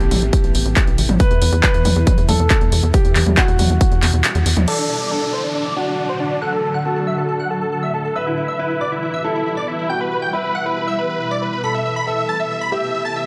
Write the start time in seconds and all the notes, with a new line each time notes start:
Already playing: C3 E3 A3 B3 E4 G4
0.00 A1, closed hi-hat
0.11 A1, open hi-hat, mid tom
0.22 A1
0.33 kick, closed hi-hat
0.44 A1, closed hi-hat
0.55 A1, open hi-hat
0.66 A1, closed hi-hat
0.77 kick, clap, closed hi-hat
0.87 A1, closed hi-hat
0.98 A1, open hi-hat
1.09 A1, closed hi-hat, mid tom
1.20 B2 G3 B4, kick, closed hi-hat
1.31 E2, closed hi-hat
1.42 E2, open hi-hat
1.53 E2, closed hi-hat
1.63 B4, kick, clap, closed hi-hat
1.74 E2, closed hi-hat
1.85 E2, open hi-hat, mid tom
1.96 E2
2.07 kick, closed hi-hat, mid tom
2.18 E2, closed hi-hat
2.29 E2 A4, open hi-hat, mid tom
2.39 E2, closed hi-hat
2.50 kick, clap, closed hi-hat
2.61 E2, closed hi-hat
2.72 E2, open hi-hat
2.83 E2, closed hi-hat
2.94 G4, kick, closed hi-hat
3.05 E2, closed hi-hat
3.16 E2, clap, open hi-hat
3.27 E2, mid tom
3.37 F#4, kick, clap, closed hi-hat
3.48 E2, closed hi-hat
3.59 E2, open hi-hat, mid tom
3.70 E2, closed hi-hat
3.81 kick, closed hi-hat
3.92 E2, closed hi-hat
4.03 E2, clap, open hi-hat
4.13 E2, closed hi-hat
4.24 clap, closed hi-hat
4.35 E2, closed hi-hat
4.46 E2, open hi-hat
4.57 E2, closed hi-hat, mid tom
4.68 A2 D3 F#3 D4 F#4 A4 D5 D6, crash, downlifter
4.79 D4 D5
4.89 D4 D5
5.00 D5 D6
5.11 D4 A4 D5
5.22 D4 D5
5.33 C5 C6
5.44 D4 D5
5.55 D4 D5
5.66 D5 D6
5.76 D4 F#4 D5
5.87 D4 D5
5.98 D4 D5
6.09 C5 C6
6.20 D4 D5
6.31 D4 D5
6.42 A4 F#5 F#6
6.53 A4 A5
6.64 A4 A5
6.74 F#5 F#6
6.85 F#4 A4 A5
6.96 A4 A5
7.07 E5 E6
7.18 A4 A5
7.29 A4 A5
7.40 F#5 F#6
7.51 A4 A5
7.61 A4 A5
7.72 A4 A5
7.83 E5 E6
7.94 A4 A5
8.05 A4 A5
8.16 B2 E3 G3 E4 B4 E5 E6
8.27 E4 E5
8.37 E4 E5
8.48 E5 E6
8.59 E4 B4 E5
8.70 E4 E5
8.81 D5 D6
8.92 E4 E5
9.03 E4 E5
9.14 E5 E6
9.24 E4 A4 E5
9.35 E4 E5
9.46 E4 E5
9.57 D5 D6
9.68 E4 E5
9.79 E4 E5
9.89 F#4 G5 G6
10.01 B4 B5
10.12 B4 B5
10.22 G5 G6
10.33 E4 B4 B5
10.44 B4 B5
10.55 F#5 F#6
10.66 B4 B5
10.77 B4 B5
10.88 E5 E6
10.98 B4 B5
11.09 B4 B5
11.20 B4 B5
11.31 D5 D6
11.42 B4 B5
11.53 B4 B5
11.64 C3 A3 B3 A4 B5 B6
11.74 E5 E6
11.85 E5 E6
11.96 B5 B6
12.07 A4 E5 E6
12.18 E5 E6
12.29 A5 A6
12.40 E5 E6
12.50 E5 E6
12.61 B5 B6
12.72 G4 E5 E6
12.83 E5 E6
12.94 E5 E6
13.05 A5 A6
13.16 E5 E6